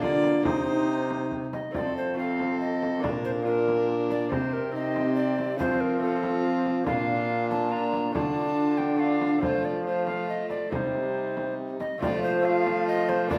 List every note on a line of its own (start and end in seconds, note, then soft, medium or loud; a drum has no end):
0.00 0.31 D3 medium
0.00 0.41 D3 medium
0.00 0.42 A#3 medium
0.00 0.46 A#3 medium
0.00 0.43 D4 medium
0.00 0.43 F4 medium
0.00 0.45 F4 medium
0.00 0.44 D5 medium
0.00 frame drum soft
0.24 frame drum medium
0.43 1.51 C3 medium
0.43 1.49 C3 medium
0.43 1.70 D#4 soft
0.43 1.55 D#4 medium
0.43 1.30 D#4 medium
0.43 1.30 C5 medium
0.43 frame drum medium
1.10 frame drum medium
1.31 frame drum soft
1.53 1.73 D#5 medium
1.53 frame drum soft
1.71 2.99 F2 medium
1.71 3.00 F2 medium
1.71 2.13 A3 soft
1.71 2.14 C4 soft
1.71 2.15 C4 medium
1.71 2.15 F4 soft
1.71 1.96 D5 medium
1.71 frame drum medium
1.75 2.15 A4 medium
1.97 2.17 C5 medium
2.14 2.99 A3 soft
2.14 3.00 C4 soft
2.14 3.00 F4 soft
2.14 3.05 A4 medium
2.18 3.05 C4 medium
2.18 2.60 F5 medium
2.39 frame drum soft
2.61 3.02 D#5 medium
2.83 frame drum soft
3.00 4.29 A#2 medium
3.00 4.28 A#2 soft
3.00 3.41 A#3 soft
3.00 3.42 D4 soft
3.00 3.46 D4 medium
3.00 3.44 F4 soft
3.00 3.46 A#4 medium
3.00 3.09 D5 medium
3.00 frame drum medium
3.25 3.31 C5 medium
3.42 4.27 A#3 soft
3.42 4.28 D4 soft
3.42 4.33 D4 medium
3.42 4.28 F4 soft
3.42 3.88 A#4 medium
3.42 4.30 A#4 medium
3.68 frame drum soft
4.10 4.34 D5 medium
4.10 frame drum soft
4.29 5.61 C3 medium
4.29 5.55 C3 soft
4.29 4.70 C4 soft
4.29 4.74 C4 medium
4.29 4.71 D#4 soft
4.29 4.74 G4 medium
4.29 4.55 C5 medium
4.29 frame drum medium
4.53 4.74 A#4 medium
4.71 5.55 C4 soft
4.71 5.58 C4 medium
4.71 5.56 D#4 soft
4.71 5.58 G4 medium
4.71 5.15 D#5 medium
4.96 frame drum medium
5.16 5.58 D5 medium
5.39 frame drum soft
5.56 6.87 F3 medium
5.56 6.84 F3 medium
5.56 5.97 A3 soft
5.56 5.98 C4 soft
5.56 6.02 C4 medium
5.56 6.00 F4 medium
5.56 6.01 F4 medium
5.56 5.82 C5 loud
5.56 frame drum medium
5.80 6.02 A#4 medium
5.98 6.83 A3 soft
5.98 6.83 C4 soft
5.98 6.84 F4 soft
5.98 6.85 F4 medium
5.98 6.44 A4 medium
6.03 6.86 C4 medium
6.23 frame drum medium
6.66 frame drum soft
6.84 8.12 A#2 medium
6.84 8.11 A#2 medium
6.84 7.68 A#3 soft
6.84 7.68 D4 medium
6.84 7.69 F4 soft
6.84 7.71 F4 medium
6.84 7.47 F5 loud
6.84 frame drum medium
6.88 7.71 D4 medium
7.50 7.73 A5 medium
7.50 frame drum medium
7.69 8.11 A#3 soft
7.69 8.12 D4 soft
7.69 8.14 D4 medium
7.69 8.13 F4 medium
7.69 8.14 F4 medium
7.69 8.14 A#5 medium
7.93 frame drum medium
8.11 9.40 D3 medium
8.11 9.39 D3 medium
8.11 8.95 A3 soft
8.11 8.96 D4 soft
8.11 8.98 D4 medium
8.11 8.97 F4 soft
8.11 8.98 F4 medium
8.11 8.79 A5 medium
8.11 frame drum medium
8.77 9.01 G5 medium
8.77 frame drum soft
8.96 9.37 A3 soft
8.96 9.39 D4 soft
8.96 9.42 D4 medium
8.96 9.40 F4 medium
8.96 9.42 F4 medium
8.96 9.42 F5 medium
9.21 frame drum medium
9.38 10.66 A3 soft
9.38 10.66 C4 soft
9.38 10.67 F4 soft
9.42 10.68 F3 medium
9.42 10.55 F3 medium
9.42 9.82 A3 medium
9.42 9.83 F4 medium
9.42 9.66 C5 medium
9.42 frame drum medium
9.65 9.86 D5 medium
9.85 10.73 A3 medium
9.85 10.71 F4 medium
9.85 10.06 C5 medium
10.07 10.28 F5 medium
10.07 frame drum soft
10.29 10.49 D#5 medium
10.50 10.71 D5 medium
10.50 frame drum soft
10.70 11.78 C3 medium
10.70 11.76 C3 soft
10.70 11.82 G3 medium
10.70 11.97 C4 soft
10.70 11.97 D#4 soft
10.70 11.79 D#4 medium
10.70 11.54 C5 medium
10.70 frame drum medium
11.37 frame drum soft
11.80 12.00 D#5 medium
11.80 frame drum soft
11.98 13.32 F3 medium
11.98 13.27 F3 medium
11.98 12.40 A3 medium
11.98 12.41 C4 medium
11.98 12.42 F4 medium
11.98 12.23 D5 loud
12.02 12.42 A3 medium
12.02 12.43 F4 medium
12.02 frame drum medium
12.23 12.47 C5 loud
12.41 13.26 A3 medium
12.41 13.32 A3 medium
12.41 13.27 C4 medium
12.41 13.27 F4 medium
12.45 13.29 F4 medium
12.45 12.87 F5 loud
12.67 frame drum medium
12.88 13.10 D#5 loud
13.09 13.30 C5 loud
13.09 frame drum medium
13.27 13.38 A#2 medium
13.27 13.38 A#3 medium
13.27 13.38 D4 medium
13.27 13.38 F4 medium
13.27 13.38 D5 loud
13.27 frame drum medium